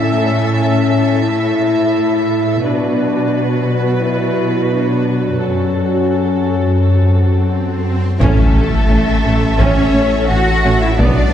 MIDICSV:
0, 0, Header, 1, 14, 480
1, 0, Start_track
1, 0, Tempo, 697674
1, 1805, Time_signature, 4, 2, 24, 8
1, 7798, End_track
2, 0, Start_track
2, 0, Title_t, "Violin section"
2, 0, Program_c, 0, 48
2, 5640, Note_on_c, 0, 76, 54
2, 7535, Note_off_c, 0, 76, 0
2, 7568, Note_on_c, 0, 74, 56
2, 7798, Note_off_c, 0, 74, 0
2, 7798, End_track
3, 0, Start_track
3, 0, Title_t, "Violin section"
3, 0, Program_c, 1, 48
3, 5639, Note_on_c, 1, 69, 59
3, 6575, Note_off_c, 1, 69, 0
3, 6597, Note_on_c, 1, 73, 65
3, 7076, Note_on_c, 1, 78, 67
3, 7081, Note_off_c, 1, 73, 0
3, 7433, Note_off_c, 1, 78, 0
3, 7437, Note_on_c, 1, 76, 51
3, 7561, Note_off_c, 1, 76, 0
3, 7561, Note_on_c, 1, 74, 78
3, 7798, Note_off_c, 1, 74, 0
3, 7798, End_track
4, 0, Start_track
4, 0, Title_t, "Ambient pad"
4, 0, Program_c, 2, 92
4, 0, Note_on_c, 2, 57, 59
4, 0, Note_on_c, 2, 64, 63
4, 0, Note_on_c, 2, 69, 59
4, 0, Note_on_c, 2, 76, 54
4, 1802, Note_off_c, 2, 64, 0
4, 1804, Note_off_c, 2, 57, 0
4, 1804, Note_off_c, 2, 69, 0
4, 1806, Note_off_c, 2, 76, 0
4, 1806, Note_on_c, 2, 71, 61
4, 1808, Note_on_c, 2, 74, 57
4, 1809, Note_on_c, 2, 54, 59
4, 1809, Note_on_c, 2, 66, 61
4, 3722, Note_on_c, 2, 69, 55
4, 3726, Note_off_c, 2, 71, 0
4, 3727, Note_off_c, 2, 74, 0
4, 3728, Note_on_c, 2, 78, 57
4, 5629, Note_off_c, 2, 69, 0
4, 5635, Note_on_c, 2, 61, 64
4, 5637, Note_on_c, 2, 57, 58
4, 5637, Note_on_c, 2, 69, 57
4, 5638, Note_on_c, 2, 76, 60
4, 5646, Note_off_c, 2, 78, 0
4, 5647, Note_off_c, 2, 54, 0
4, 5647, Note_off_c, 2, 66, 0
4, 7532, Note_off_c, 2, 61, 0
4, 7533, Note_off_c, 2, 57, 0
4, 7533, Note_off_c, 2, 69, 0
4, 7534, Note_off_c, 2, 76, 0
4, 7550, Note_on_c, 2, 59, 62
4, 7551, Note_on_c, 2, 74, 64
4, 7552, Note_on_c, 2, 54, 69
4, 7552, Note_on_c, 2, 71, 64
4, 7798, Note_off_c, 2, 54, 0
4, 7798, Note_off_c, 2, 59, 0
4, 7798, Note_off_c, 2, 71, 0
4, 7798, Note_off_c, 2, 74, 0
4, 7798, End_track
5, 0, Start_track
5, 0, Title_t, "French horn section"
5, 0, Program_c, 3, 60
5, 0, Note_on_c, 3, 61, 89
5, 837, Note_on_c, 3, 64, 85
5, 847, Note_off_c, 3, 61, 0
5, 1782, Note_off_c, 3, 64, 0
5, 1807, Note_on_c, 3, 62, 82
5, 2400, Note_off_c, 3, 62, 0
5, 2517, Note_on_c, 3, 59, 64
5, 2756, Note_off_c, 3, 59, 0
5, 2757, Note_on_c, 3, 64, 71
5, 3238, Note_on_c, 3, 62, 54
5, 3241, Note_off_c, 3, 64, 0
5, 3719, Note_on_c, 3, 61, 62
5, 3721, Note_off_c, 3, 62, 0
5, 5374, Note_off_c, 3, 61, 0
5, 5633, Note_on_c, 3, 64, 54
5, 5634, Note_on_c, 3, 61, 51
5, 5807, Note_off_c, 3, 61, 0
5, 5807, Note_off_c, 3, 64, 0
5, 6601, Note_on_c, 3, 61, 45
5, 6605, Note_on_c, 3, 64, 52
5, 6771, Note_off_c, 3, 61, 0
5, 6773, Note_off_c, 3, 64, 0
5, 7542, Note_on_c, 3, 59, 53
5, 7546, Note_on_c, 3, 62, 55
5, 7721, Note_off_c, 3, 59, 0
5, 7723, Note_off_c, 3, 62, 0
5, 7798, End_track
6, 0, Start_track
6, 0, Title_t, "Viola section"
6, 0, Program_c, 4, 48
6, 0, Note_on_c, 4, 69, 57
6, 0, Note_on_c, 4, 76, 61
6, 1778, Note_off_c, 4, 69, 0
6, 1779, Note_off_c, 4, 76, 0
6, 1812, Note_on_c, 4, 66, 57
6, 1813, Note_on_c, 4, 71, 53
6, 3701, Note_off_c, 4, 71, 0
6, 3723, Note_on_c, 4, 69, 40
6, 5479, Note_off_c, 4, 69, 0
6, 5484, Note_off_c, 4, 66, 0
6, 5642, Note_on_c, 4, 61, 57
6, 5642, Note_on_c, 4, 69, 46
6, 5867, Note_off_c, 4, 61, 0
6, 5886, Note_on_c, 4, 61, 41
6, 5941, Note_off_c, 4, 61, 0
6, 6124, Note_on_c, 4, 61, 34
6, 6179, Note_off_c, 4, 61, 0
6, 6362, Note_on_c, 4, 61, 36
6, 6417, Note_off_c, 4, 61, 0
6, 6604, Note_on_c, 4, 61, 57
6, 6828, Note_off_c, 4, 61, 0
6, 6841, Note_on_c, 4, 61, 44
6, 6896, Note_off_c, 4, 61, 0
6, 7083, Note_on_c, 4, 61, 49
6, 7138, Note_off_c, 4, 61, 0
6, 7324, Note_on_c, 4, 61, 51
6, 7379, Note_off_c, 4, 61, 0
6, 7536, Note_off_c, 4, 69, 0
6, 7562, Note_on_c, 4, 59, 63
6, 7562, Note_on_c, 4, 66, 57
6, 7786, Note_off_c, 4, 59, 0
6, 7798, Note_off_c, 4, 66, 0
6, 7798, End_track
7, 0, Start_track
7, 0, Title_t, "Cello section"
7, 0, Program_c, 5, 48
7, 0, Note_on_c, 5, 45, 64
7, 1778, Note_off_c, 5, 45, 0
7, 1803, Note_on_c, 5, 47, 59
7, 3696, Note_off_c, 5, 47, 0
7, 3730, Note_on_c, 5, 42, 43
7, 5482, Note_off_c, 5, 42, 0
7, 5642, Note_on_c, 5, 57, 63
7, 6576, Note_off_c, 5, 57, 0
7, 6600, Note_on_c, 5, 61, 68
7, 7082, Note_off_c, 5, 61, 0
7, 7082, Note_on_c, 5, 66, 77
7, 7436, Note_off_c, 5, 66, 0
7, 7448, Note_on_c, 5, 64, 64
7, 7567, Note_off_c, 5, 64, 0
7, 7567, Note_on_c, 5, 62, 81
7, 7798, Note_off_c, 5, 62, 0
7, 7798, End_track
8, 0, Start_track
8, 0, Title_t, "Trombone section"
8, 0, Program_c, 6, 61
8, 5650, Note_on_c, 6, 57, 46
8, 5652, Note_on_c, 6, 45, 46
8, 5816, Note_off_c, 6, 57, 0
8, 5817, Note_off_c, 6, 45, 0
8, 6590, Note_on_c, 6, 45, 57
8, 6596, Note_on_c, 6, 57, 53
8, 6765, Note_off_c, 6, 45, 0
8, 6768, Note_off_c, 6, 57, 0
8, 7568, Note_on_c, 6, 54, 49
8, 7569, Note_on_c, 6, 47, 46
8, 7735, Note_off_c, 6, 47, 0
8, 7735, Note_off_c, 6, 54, 0
8, 7798, End_track
9, 0, Start_track
9, 0, Title_t, "Analog synth bass"
9, 0, Program_c, 7, 38
9, 5643, Note_on_c, 7, 45, 77
9, 5787, Note_off_c, 7, 45, 0
9, 5884, Note_on_c, 7, 45, 63
9, 6029, Note_off_c, 7, 45, 0
9, 6123, Note_on_c, 7, 57, 64
9, 6268, Note_off_c, 7, 57, 0
9, 6363, Note_on_c, 7, 45, 59
9, 6507, Note_off_c, 7, 45, 0
9, 6604, Note_on_c, 7, 45, 74
9, 6748, Note_off_c, 7, 45, 0
9, 6841, Note_on_c, 7, 57, 59
9, 6986, Note_off_c, 7, 57, 0
9, 7082, Note_on_c, 7, 57, 53
9, 7227, Note_off_c, 7, 57, 0
9, 7321, Note_on_c, 7, 57, 49
9, 7466, Note_off_c, 7, 57, 0
9, 7558, Note_on_c, 7, 47, 72
9, 7704, Note_off_c, 7, 47, 0
9, 7798, End_track
10, 0, Start_track
10, 0, Title_t, "Detuned saw bass"
10, 0, Program_c, 8, 39
10, 5648, Note_on_c, 8, 33, 58
10, 7561, Note_on_c, 8, 35, 58
10, 7571, Note_off_c, 8, 33, 0
10, 7798, Note_off_c, 8, 35, 0
10, 7798, End_track
11, 0, Start_track
11, 0, Title_t, "Double bass section"
11, 0, Program_c, 10, 48
11, 5648, Note_on_c, 10, 33, 57
11, 5703, Note_off_c, 10, 33, 0
11, 5890, Note_on_c, 10, 33, 44
11, 5945, Note_off_c, 10, 33, 0
11, 6125, Note_on_c, 10, 33, 43
11, 6180, Note_off_c, 10, 33, 0
11, 6367, Note_on_c, 10, 33, 42
11, 6422, Note_off_c, 10, 33, 0
11, 6609, Note_on_c, 10, 33, 70
11, 6664, Note_off_c, 10, 33, 0
11, 6845, Note_on_c, 10, 33, 38
11, 6900, Note_off_c, 10, 33, 0
11, 7090, Note_on_c, 10, 33, 44
11, 7145, Note_off_c, 10, 33, 0
11, 7328, Note_on_c, 10, 33, 46
11, 7383, Note_off_c, 10, 33, 0
11, 7566, Note_on_c, 10, 35, 54
11, 7621, Note_off_c, 10, 35, 0
11, 7798, End_track
12, 0, Start_track
12, 0, Title_t, "Impact"
12, 0, Program_c, 11, 103
12, 5648, Note_on_c, 11, 60, 57
12, 7566, Note_off_c, 11, 60, 0
12, 7798, End_track
13, 0, Start_track
13, 0, Title_t, "Swell"
13, 0, Program_c, 12, 103
13, 3731, Note_on_c, 12, 60, 43
13, 5648, Note_off_c, 12, 60, 0
13, 7798, End_track
14, 0, Start_track
14, 0, Title_t, "Taiko and cinematic ensemble drums"
14, 5644, Note_on_c, 9, 41, 74
14, 5712, Note_off_c, 9, 41, 0
14, 6601, Note_on_c, 9, 41, 67
14, 6670, Note_off_c, 9, 41, 0
14, 7560, Note_on_c, 9, 41, 74
14, 7629, Note_off_c, 9, 41, 0
14, 7798, End_track
0, 0, End_of_file